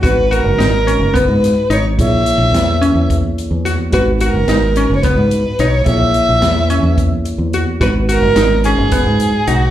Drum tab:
HH |xxxxxxx|xxxxxxx|xxxxxxx|xxxxxxx|
SD |--o--o-|--o---o|--o---o|--o----|
BD |o---o--|o---o--|o---o--|o---o--|

HH |xxxxxxx|
SD |--o----|
BD |o---o--|